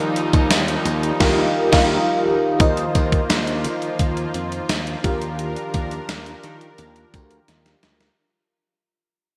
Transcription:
Already playing: fm electric piano D#3 D#4 F4 G4 A#4 F5, overdriven electric guitar D#3 A#3 D#4, analog synth pad F3 G3 D#4
0.16 closed hi-hat
0.33 slap bass D#2, kick, closed hi-hat
0.50 slap bass D#2, snare, closed hi-hat, tambourine
0.68 closed hi-hat
0.85 slap bass D#2, closed hi-hat
1.03 closed hi-hat
1.20 slap bass D#2, overdriven electric guitar D#3 A#3 D#4, fm electric piano D#4 F4 G4 A#4 F5, kick, snare, crash
1.72 slap bass D#2, overdriven electric guitar D#3 A#3 D#4, fm electric piano D#4 F4 G4 A#4 F5, kick, snare, crash
2.59 slap bass D#2, fm electric piano D#3 F4 A#4 D#5, analog synth pad F3 A#3 F4, analog polysynth D#4 F4 C5, kick, closed hi-hat
2.77 closed hi-hat
2.95 slap bass D#2, kick, closed hi-hat
3.12 kick, closed hi-hat
3.29 slap bass D#2, snare, closed hi-hat, tambourine
3.47 closed hi-hat
3.64 slap bass D#3, closed hi-hat
3.82 closed hi-hat
3.99 slap bass D#2, kick, closed hi-hat
4.17 closed hi-hat
4.34 slap bass F2, closed hi-hat
4.52 closed hi-hat
4.69 slap bass D#2, snare, closed hi-hat, tambourine
4.87 closed hi-hat
5.03 slap bass D#2, fm electric piano D#3 D4 F4 G4 A#4 F5, analog synth pad D4 A#4, analog polysynth F4 G4 A#4, kick, closed hi-hat
5.22 closed hi-hat
5.39 closed hi-hat
5.56 closed hi-hat
5.74 slap bass D#2, kick, closed hi-hat
5.91 closed hi-hat
6.09 slap bass D#2, snare, closed hi-hat, tambourine
6.26 closed hi-hat
6.43 slap bass D#3, closed hi-hat
6.61 closed hi-hat
6.78 slap bass D#2, closed hi-hat
6.96 closed hi-hat
7.14 slap bass D2, kick, closed hi-hat
7.31 closed hi-hat
7.48 slap bass D#2, snare, closed hi-hat
7.66 snare, closed hi-hat
7.83 slap bass D2, snare, closed hi-hat
8.01 snare, closed hi-hat

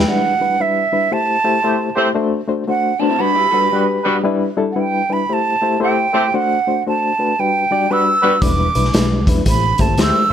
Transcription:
Already playing: flute G5
0.08 reed electric piano G3 D4 E4 B4, flute F#5
0.41 reed electric piano G3 D4 E4 B4
0.60 reed electric piano G3 D4 E4 B4, flute E5
0.92 reed electric piano G3 D4 E4 B4
1.11 reed electric piano A3 E4 G4 C5, flute A5
1.44 reed electric piano A3 E4 G4 C5
1.63 horn section A3 C4 G4 C5, reed electric piano A3 E4 G4 C5
1.96 horn section A3 C4 G4 C5, reed electric piano A3 E4 G4 C5
2.15 reed electric piano A3 D4 F#4 C5
2.48 reed electric piano A3 D4 F#4 C5
2.67 reed electric piano A3 D4 F#4 C5, flute F#5
3.00 reed electric piano A3 D4 F#4 C5, clean electric guitar B3 D4, flute A5
3.10 clean electric guitar C4 E4
3.18 reed electric piano G3 D4 F#4 B4, clean electric guitar D4 F#4, flute B5
3.35 clean electric guitar E4 G4
3.51 reed electric piano G3 D4 F#4 B4, clean electric guitar F#4 A4
3.61 clean electric guitar G4 B4
3.72 horn section G3 B3 F#4 B4, reed electric piano G3 D4 F#4 B4
4.04 horn section G3 B3 F#4 B4, reed electric piano G3 D4 F#4 B4
4.24 reed electric piano G3 D4 E4 B4
4.57 reed electric piano G3 D4 E4 A4
4.72 reed electric piano G3 D4 E4, flute F#5
4.76 reed electric piano B4
4.80 flute G5
5.09 reed electric piano G3 D4 E4 B4, flute B5
5.29 reed electric piano A3 E4 G4 C5
5.33 flute A5
5.62 reed electric piano A3 E4 G4 C5
5.80 reed electric piano A3 E4 G4 C5, horn section A3 C4 G4 C5, flute G5
6.13 horn section A3 C4 G4 C5, reed electric piano A3 E4 G4 C5
6.34 reed electric piano A3 D4 F#4 C5, flute F#5
6.67 reed electric piano A3 D4 F#4 C5
6.86 reed electric piano A3 D4 F#4 C5, flute A5
7.19 reed electric piano A3 D4 F#4 B4
7.39 reed electric piano G3 D4 F#4 B4, flute G5
7.71 reed electric piano G3 D4 F#4 D5
7.90 horn section G3 B3 F#4 B4, reed electric piano G3 D4 F#4 B4, flute E6
8.22 horn section G3 B3 F#4 B4, reed electric piano G3 D4 F#4 B4
8.42 fingered electric bass E1, reed electric piano G3 D4 E4 B4, flute D6, kick, closed hi-hat
8.75 fingered electric bass B1, reed electric piano G3 D4 E4 B4, closed hi-hat
8.85 snare
8.94 fingered electric bass B1, reed electric piano G3 D4 E4 B4, snare, closed hi-hat
9.27 fingered electric bass E2, reed electric piano G3 D4 E4 B4, kick, closed hi-hat
9.46 fingered electric bass A1, reed electric piano A3 E4 G4, flute B5, kick, closed hi-hat
9.78 fingered electric bass G1, reed electric piano A3 E4 G4 C5, flute A5, kick, closed hi-hat
9.97 fingered electric bass D2, horn section A3 C4 G4 C5, reed electric piano A3 E4 G4 C5, snare, closed hi-hat
10.02 flute E6

